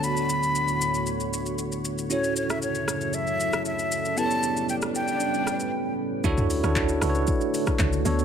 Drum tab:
HH |----------------|----------------|----------------|--o---o---o---o-|
SH |xxxxxxxxxxxxxxxx|xxxxxxxxxxxxxxxx|xxxxxxxxxxxx----|xxxxxxxxxxxxxxxx|
CP |----------------|----------------|----------------|----x-------x---|
SD |----------------|---r--r----r----|-----r----r-----|---r--r----r----|
T2 |----------------|----------------|----------------|-o--------------|
BD |----------------|----------------|----------------|o---o---o--oo---|